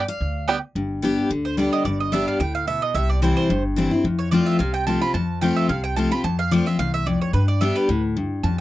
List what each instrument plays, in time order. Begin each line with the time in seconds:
0.08 steel-string acoustic guitar F5
0.20 upright bass D2
0.48 five-string banjo G3 B3 D4, mandolin B3 G4 D5 G5
0.75 upright bass G1, steel-string acoustic guitar G2
1.02 steel-string acoustic guitar G3 B3 D4 G4
1.30 upright bass D2, steel-string acoustic guitar D3
1.45 mandolin C5
1.57 steel-string acoustic guitar G3 B3 D4 G4, mandolin D5
1.73 mandolin D#5
1.85 upright bass G1, steel-string acoustic guitar G2, mandolin D5
2.00 mandolin D#5
2.12 steel-string acoustic guitar G3 B3 D4 G4, mandolin E5
2.28 mandolin F5
2.40 upright bass D2, steel-string acoustic guitar A2, mandolin G5
2.55 mandolin F5
2.67 steel-string acoustic guitar B2, mandolin E5
2.82 mandolin D#5
2.94 upright bass C2, steel-string acoustic guitar C3, mandolin E5
3.10 mandolin D5
3.22 steel-string acoustic guitar E3 G3 C4 E4, mandolin C5
3.37 mandolin C5
3.49 upright bass G1, steel-string acoustic guitar G2
3.76 steel-string acoustic guitar E3 G3 C4 E4
3.91 steel-string acoustic guitar C4 E4
4.04 upright bass F2, steel-string acoustic guitar F2
4.19 mandolin C#5
4.31 steel-string acoustic guitar F3 A3 C4 F4, mandolin D5
4.46 mandolin E5
4.59 upright bass C2, steel-string acoustic guitar C3, mandolin F5
4.74 mandolin G5
4.87 steel-string acoustic guitar F3 A3 C4 F4, mandolin A5
5.01 steel-string acoustic guitar C4 F4, mandolin B5
5.14 upright bass F2, steel-string acoustic guitar F2, mandolin A5
5.41 steel-string acoustic guitar F3 A3 C4 F4, mandolin G5
5.56 mandolin E5
5.69 upright bass C2, steel-string acoustic guitar C3, mandolin F5
5.84 mandolin G5
5.96 steel-string acoustic guitar F3 A3 C4 F4, mandolin A5
6.11 steel-string acoustic guitar C4 F4, mandolin B5
6.24 upright bass F2, steel-string acoustic guitar F2, mandolin A5
6.39 mandolin F5
6.51 steel-string acoustic guitar F3 A3 C4 F4, mandolin D5
6.66 steel-string acoustic guitar C4 F4, mandolin E5
6.78 upright bass C2, steel-string acoustic guitar E2, mandolin F5
6.94 mandolin E5
7.06 steel-string acoustic guitar F2, mandolin D5
7.21 mandolin C#5
7.33 upright bass G2, steel-string acoustic guitar G2, mandolin B4
7.48 mandolin D5
7.61 steel-string acoustic guitar G3 B3 D4 G4, mandolin E5
7.76 mandolin B4
7.89 upright bass D2, steel-string acoustic guitar A2
8.17 steel-string acoustic guitar G2
8.43 upright bass F2, steel-string acoustic guitar F2, mandolin A5